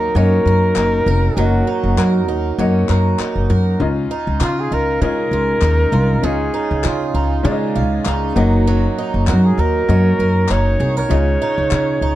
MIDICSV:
0, 0, Header, 1, 7, 480
1, 0, Start_track
1, 0, Key_signature, -5, "major"
1, 0, Tempo, 608519
1, 1076, Time_signature, 4, 2, 24, 8
1, 9586, End_track
2, 0, Start_track
2, 0, Title_t, "Flugelhorn"
2, 0, Program_c, 0, 56
2, 0, Note_on_c, 0, 70, 100
2, 127, Note_off_c, 0, 70, 0
2, 132, Note_on_c, 0, 70, 123
2, 1092, Note_on_c, 0, 66, 87
2, 1104, Note_off_c, 0, 70, 0
2, 2043, Note_off_c, 0, 66, 0
2, 3499, Note_on_c, 0, 65, 89
2, 3627, Note_on_c, 0, 68, 95
2, 3639, Note_off_c, 0, 65, 0
2, 3736, Note_on_c, 0, 70, 107
2, 3748, Note_off_c, 0, 68, 0
2, 3961, Note_off_c, 0, 70, 0
2, 3966, Note_on_c, 0, 70, 113
2, 4926, Note_on_c, 0, 68, 87
2, 4938, Note_off_c, 0, 70, 0
2, 5880, Note_off_c, 0, 68, 0
2, 7326, Note_on_c, 0, 66, 82
2, 7459, Note_on_c, 0, 68, 95
2, 7470, Note_off_c, 0, 66, 0
2, 7571, Note_on_c, 0, 70, 114
2, 7583, Note_off_c, 0, 68, 0
2, 8290, Note_on_c, 0, 73, 102
2, 8302, Note_off_c, 0, 70, 0
2, 8655, Note_off_c, 0, 73, 0
2, 8663, Note_on_c, 0, 73, 114
2, 9586, Note_off_c, 0, 73, 0
2, 9586, End_track
3, 0, Start_track
3, 0, Title_t, "Upright piano"
3, 0, Program_c, 1, 0
3, 0, Control_c, 1, 64, 127
3, 0, Note_on_c, 1, 58, 96
3, 0, Note_on_c, 1, 66, 91
3, 0, Note_on_c, 1, 75, 100
3, 118, Note_off_c, 1, 58, 0
3, 118, Note_on_c, 1, 58, 72
3, 122, Note_off_c, 1, 66, 0
3, 122, Note_on_c, 1, 66, 62
3, 131, Note_off_c, 1, 75, 0
3, 131, Note_on_c, 1, 75, 80
3, 783, Note_off_c, 1, 58, 0
3, 786, Note_off_c, 1, 66, 0
3, 790, Note_off_c, 1, 75, 0
3, 1081, Note_on_c, 1, 58, 72
3, 1091, Note_on_c, 1, 66, 64
3, 1096, Note_on_c, 1, 75, 79
3, 1745, Note_off_c, 1, 58, 0
3, 1750, Note_off_c, 1, 66, 0
3, 1752, Note_off_c, 1, 75, 0
3, 2040, Note_on_c, 1, 58, 82
3, 2049, Note_on_c, 1, 66, 76
3, 2056, Note_on_c, 1, 75, 88
3, 2705, Note_off_c, 1, 58, 0
3, 2709, Note_off_c, 1, 66, 0
3, 2712, Note_off_c, 1, 75, 0
3, 2995, Note_on_c, 1, 61, 81
3, 3001, Note_on_c, 1, 65, 80
3, 3004, Control_c, 1, 64, 0
3, 3009, Note_on_c, 1, 75, 90
3, 3138, Control_c, 1, 64, 127
3, 3662, Note_off_c, 1, 61, 0
3, 3665, Note_off_c, 1, 65, 0
3, 3669, Note_off_c, 1, 75, 0
3, 3954, Note_on_c, 1, 61, 74
3, 3962, Note_on_c, 1, 65, 66
3, 3970, Note_on_c, 1, 75, 77
3, 4621, Note_off_c, 1, 61, 0
3, 4625, Note_off_c, 1, 65, 0
3, 4629, Note_off_c, 1, 75, 0
3, 4904, Note_on_c, 1, 61, 73
3, 4915, Note_on_c, 1, 65, 69
3, 4922, Note_on_c, 1, 75, 77
3, 5576, Note_off_c, 1, 61, 0
3, 5582, Note_off_c, 1, 65, 0
3, 5585, Note_off_c, 1, 75, 0
3, 5863, Note_on_c, 1, 61, 84
3, 5870, Note_on_c, 1, 65, 76
3, 5880, Note_on_c, 1, 74, 78
3, 5929, Note_on_c, 1, 75, 99
3, 5933, Note_off_c, 1, 74, 0
3, 6536, Note_off_c, 1, 61, 0
3, 6539, Note_off_c, 1, 65, 0
3, 6569, Note_off_c, 1, 75, 0
3, 6589, Note_on_c, 1, 58, 87
3, 6596, Note_on_c, 1, 66, 84
3, 6603, Note_on_c, 1, 75, 98
3, 6605, Control_c, 1, 64, 0
3, 6737, Control_c, 1, 64, 127
3, 7365, Note_off_c, 1, 58, 0
3, 7368, Note_off_c, 1, 66, 0
3, 7372, Note_off_c, 1, 75, 0
3, 7790, Note_on_c, 1, 58, 69
3, 7796, Note_on_c, 1, 66, 65
3, 7802, Note_on_c, 1, 75, 77
3, 8460, Note_off_c, 1, 58, 0
3, 8463, Note_off_c, 1, 66, 0
3, 8466, Note_off_c, 1, 75, 0
3, 8744, Note_on_c, 1, 61, 76
3, 8752, Note_on_c, 1, 65, 71
3, 8761, Note_on_c, 1, 75, 81
3, 8767, Control_c, 1, 64, 0
3, 8920, Control_c, 1, 64, 127
3, 9417, Note_off_c, 1, 61, 0
3, 9421, Note_off_c, 1, 65, 0
3, 9426, Note_off_c, 1, 75, 0
3, 9586, End_track
4, 0, Start_track
4, 0, Title_t, "Twelve-string acoustic guitar"
4, 0, Program_c, 2, 25
4, 0, Note_on_c, 2, 54, 88
4, 0, Note_on_c, 2, 63, 65
4, 0, Note_on_c, 2, 70, 65
4, 128, Note_on_c, 2, 61, 74
4, 362, Note_off_c, 2, 70, 0
4, 373, Note_on_c, 2, 70, 59
4, 605, Note_off_c, 2, 63, 0
4, 608, Note_on_c, 2, 63, 65
4, 839, Note_off_c, 2, 70, 0
4, 849, Note_on_c, 2, 70, 69
4, 1075, Note_off_c, 2, 54, 0
4, 1084, Note_on_c, 2, 54, 87
4, 1317, Note_off_c, 2, 63, 0
4, 1320, Note_on_c, 2, 63, 56
4, 1552, Note_off_c, 2, 70, 0
4, 1561, Note_on_c, 2, 70, 67
4, 1798, Note_off_c, 2, 63, 0
4, 1801, Note_on_c, 2, 63, 59
4, 2041, Note_off_c, 2, 61, 0
4, 2044, Note_on_c, 2, 61, 73
4, 2274, Note_off_c, 2, 70, 0
4, 2284, Note_on_c, 2, 70, 55
4, 2520, Note_off_c, 2, 63, 0
4, 2523, Note_on_c, 2, 63, 61
4, 2750, Note_off_c, 2, 70, 0
4, 2759, Note_on_c, 2, 70, 64
4, 2999, Note_off_c, 2, 54, 0
4, 3050, Note_off_c, 2, 70, 0
4, 3238, Note_off_c, 2, 63, 0
4, 3241, Note_on_c, 2, 63, 64
4, 3264, Note_off_c, 2, 61, 0
4, 3479, Note_on_c, 2, 65, 70
4, 3719, Note_off_c, 2, 63, 0
4, 3722, Note_on_c, 2, 63, 61
4, 3958, Note_on_c, 2, 56, 73
4, 4195, Note_off_c, 2, 65, 0
4, 4204, Note_on_c, 2, 65, 57
4, 4439, Note_off_c, 2, 63, 0
4, 4442, Note_on_c, 2, 63, 59
4, 4665, Note_off_c, 2, 65, 0
4, 4675, Note_on_c, 2, 65, 64
4, 4918, Note_on_c, 2, 49, 85
4, 5154, Note_off_c, 2, 63, 0
4, 5157, Note_on_c, 2, 63, 62
4, 5382, Note_off_c, 2, 65, 0
4, 5391, Note_on_c, 2, 65, 67
4, 5633, Note_off_c, 2, 63, 0
4, 5636, Note_on_c, 2, 63, 59
4, 5867, Note_off_c, 2, 56, 0
4, 5876, Note_on_c, 2, 56, 74
4, 6108, Note_off_c, 2, 65, 0
4, 6118, Note_on_c, 2, 65, 64
4, 6354, Note_off_c, 2, 63, 0
4, 6357, Note_on_c, 2, 63, 66
4, 6595, Note_off_c, 2, 56, 0
4, 6598, Note_on_c, 2, 54, 79
4, 6649, Note_off_c, 2, 49, 0
4, 6649, Note_off_c, 2, 65, 0
4, 6832, Note_off_c, 2, 54, 0
4, 6842, Note_on_c, 2, 54, 78
4, 7084, Note_off_c, 2, 63, 0
4, 7087, Note_on_c, 2, 63, 60
4, 7331, Note_on_c, 2, 70, 68
4, 7561, Note_off_c, 2, 63, 0
4, 7564, Note_on_c, 2, 63, 57
4, 7806, Note_on_c, 2, 61, 73
4, 8036, Note_off_c, 2, 70, 0
4, 8045, Note_on_c, 2, 70, 59
4, 8283, Note_off_c, 2, 63, 0
4, 8286, Note_on_c, 2, 63, 68
4, 8518, Note_off_c, 2, 70, 0
4, 8521, Note_on_c, 2, 68, 64
4, 8652, Note_off_c, 2, 68, 0
4, 8652, Note_on_c, 2, 70, 61
4, 8759, Note_off_c, 2, 54, 0
4, 8760, Note_on_c, 2, 49, 83
4, 8811, Note_off_c, 2, 70, 0
4, 9002, Note_off_c, 2, 63, 0
4, 9005, Note_on_c, 2, 63, 66
4, 9029, Note_off_c, 2, 61, 0
4, 9239, Note_on_c, 2, 68, 70
4, 9481, Note_off_c, 2, 63, 0
4, 9484, Note_on_c, 2, 63, 64
4, 9586, Note_off_c, 2, 49, 0
4, 9586, Note_off_c, 2, 63, 0
4, 9586, Note_off_c, 2, 68, 0
4, 9586, End_track
5, 0, Start_track
5, 0, Title_t, "Upright bass"
5, 0, Program_c, 3, 32
5, 118, Note_on_c, 3, 42, 104
5, 314, Note_off_c, 3, 42, 0
5, 359, Note_on_c, 3, 42, 90
5, 554, Note_off_c, 3, 42, 0
5, 599, Note_on_c, 3, 30, 86
5, 795, Note_off_c, 3, 30, 0
5, 838, Note_on_c, 3, 29, 101
5, 1034, Note_off_c, 3, 29, 0
5, 1078, Note_on_c, 3, 30, 102
5, 1273, Note_off_c, 3, 30, 0
5, 1448, Note_on_c, 3, 30, 88
5, 1536, Note_off_c, 3, 30, 0
5, 1556, Note_on_c, 3, 42, 105
5, 1793, Note_off_c, 3, 42, 0
5, 1793, Note_on_c, 3, 39, 94
5, 1990, Note_off_c, 3, 39, 0
5, 2039, Note_on_c, 3, 42, 105
5, 2234, Note_off_c, 3, 42, 0
5, 2281, Note_on_c, 3, 42, 88
5, 2475, Note_off_c, 3, 42, 0
5, 2647, Note_on_c, 3, 30, 75
5, 2735, Note_off_c, 3, 30, 0
5, 2760, Note_on_c, 3, 42, 100
5, 2955, Note_off_c, 3, 42, 0
5, 2997, Note_on_c, 3, 37, 107
5, 3193, Note_off_c, 3, 37, 0
5, 3369, Note_on_c, 3, 37, 89
5, 3456, Note_off_c, 3, 37, 0
5, 3476, Note_on_c, 3, 49, 100
5, 3672, Note_off_c, 3, 49, 0
5, 3719, Note_on_c, 3, 37, 85
5, 3914, Note_off_c, 3, 37, 0
5, 3954, Note_on_c, 3, 49, 97
5, 4151, Note_off_c, 3, 49, 0
5, 4191, Note_on_c, 3, 37, 83
5, 4389, Note_off_c, 3, 37, 0
5, 4431, Note_on_c, 3, 39, 104
5, 4629, Note_off_c, 3, 39, 0
5, 4670, Note_on_c, 3, 36, 108
5, 4868, Note_off_c, 3, 36, 0
5, 4917, Note_on_c, 3, 37, 97
5, 5113, Note_off_c, 3, 37, 0
5, 5292, Note_on_c, 3, 37, 89
5, 5378, Note_off_c, 3, 37, 0
5, 5404, Note_on_c, 3, 49, 99
5, 5597, Note_off_c, 3, 49, 0
5, 5634, Note_on_c, 3, 37, 83
5, 5831, Note_off_c, 3, 37, 0
5, 5873, Note_on_c, 3, 49, 122
5, 6116, Note_on_c, 3, 37, 84
5, 6128, Note_off_c, 3, 49, 0
5, 6312, Note_off_c, 3, 37, 0
5, 6356, Note_on_c, 3, 37, 94
5, 6552, Note_off_c, 3, 37, 0
5, 6593, Note_on_c, 3, 30, 100
5, 6987, Note_off_c, 3, 30, 0
5, 7209, Note_on_c, 3, 30, 85
5, 7317, Note_on_c, 3, 42, 106
5, 7329, Note_off_c, 3, 30, 0
5, 7513, Note_off_c, 3, 42, 0
5, 7554, Note_on_c, 3, 39, 99
5, 7751, Note_off_c, 3, 39, 0
5, 7798, Note_on_c, 3, 42, 111
5, 7994, Note_off_c, 3, 42, 0
5, 8039, Note_on_c, 3, 42, 86
5, 8234, Note_off_c, 3, 42, 0
5, 8283, Note_on_c, 3, 30, 85
5, 8477, Note_off_c, 3, 30, 0
5, 8516, Note_on_c, 3, 36, 100
5, 8713, Note_off_c, 3, 36, 0
5, 8756, Note_on_c, 3, 37, 97
5, 8953, Note_off_c, 3, 37, 0
5, 9132, Note_on_c, 3, 37, 88
5, 9219, Note_off_c, 3, 37, 0
5, 9241, Note_on_c, 3, 49, 100
5, 9436, Note_off_c, 3, 49, 0
5, 9475, Note_on_c, 3, 37, 78
5, 9586, Note_off_c, 3, 37, 0
5, 9586, End_track
6, 0, Start_track
6, 0, Title_t, "Muted upright bass strokes"
6, 2519, Note_on_c, 9, 29, 48
6, 2598, Note_off_c, 9, 29, 0
6, 9586, End_track
7, 0, Start_track
7, 0, Title_t, "Drums"
7, 599, Note_on_c, 9, 39, 78
7, 677, Note_off_c, 9, 39, 0
7, 1565, Note_on_c, 9, 39, 81
7, 1643, Note_off_c, 9, 39, 0
7, 2280, Note_on_c, 9, 39, 68
7, 2359, Note_off_c, 9, 39, 0
7, 2519, Note_on_c, 9, 39, 74
7, 2598, Note_off_c, 9, 39, 0
7, 3476, Note_on_c, 9, 39, 75
7, 3555, Note_off_c, 9, 39, 0
7, 4430, Note_on_c, 9, 39, 70
7, 4509, Note_off_c, 9, 39, 0
7, 5395, Note_on_c, 9, 39, 80
7, 5474, Note_off_c, 9, 39, 0
7, 6353, Note_on_c, 9, 39, 76
7, 6432, Note_off_c, 9, 39, 0
7, 7315, Note_on_c, 9, 39, 77
7, 7393, Note_off_c, 9, 39, 0
7, 8271, Note_on_c, 9, 39, 77
7, 8350, Note_off_c, 9, 39, 0
7, 9238, Note_on_c, 9, 39, 80
7, 9317, Note_off_c, 9, 39, 0
7, 9586, End_track
0, 0, End_of_file